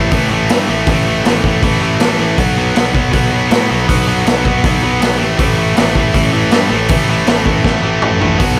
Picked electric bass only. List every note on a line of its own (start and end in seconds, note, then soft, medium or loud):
0.00 0.10 A1 medium
0.12 0.29 A1 medium
0.32 0.48 A1 medium
0.51 0.67 G2 medium
0.69 0.85 A1 medium
0.87 1.20 A1 medium
1.25 1.42 A1 medium
1.44 1.61 A1 medium
1.62 1.79 A1 medium
1.81 1.98 A1 medium
2.00 2.17 A1 medium
2.19 2.36 A1 medium
2.39 2.71 B1 medium
2.76 2.93 B1 medium
2.94 3.11 B1 medium
3.14 3.30 B1 medium
3.33 3.49 B1 medium
3.51 3.68 A2 medium
3.71 3.87 B1 medium
3.90 4.22 B1 medium
4.27 4.43 B1 medium
4.46 4.62 B1 medium
4.65 4.81 B1 medium
4.84 5.00 B1 medium
5.02 5.18 B1 medium
5.22 5.38 A1 medium
5.39 5.72 A1 medium
5.77 5.93 A1 medium
5.96 6.12 A1 medium
6.15 6.31 A1 medium
6.33 6.50 A1 medium
6.53 6.69 G2 medium
6.70 6.87 A1 medium
6.89 7.22 A1 medium
7.27 7.44 A1 medium
7.46 7.62 A1 medium
7.64 7.81 A1 medium
7.84 8.00 A1 medium
8.03 8.19 A1 medium
8.20 8.37 A1 medium
8.40 8.60 B1 medium